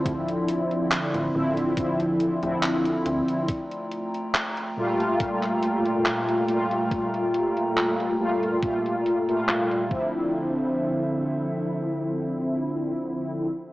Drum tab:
HH |xxxxxx-xxxxxxxxx|xxxxxx-xxxxxxxxx|xxxxxx-xxxxxxx--|----------------|
CP |----x-------x---|----x----x--x---|----x-------x---|----------------|
BD |o-------o-------|o-------o-------|o-------o-----o-|----------------|